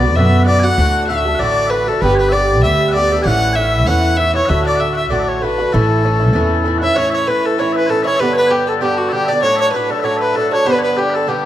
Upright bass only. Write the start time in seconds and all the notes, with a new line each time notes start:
Already playing: B1
0.16 F#2
0.78 D2
1.39 A1
2.02 G1
2.64 D2
3.26 A1
3.88 E2
4.50 D2
5.12 A1
5.74 A1
6.35 E2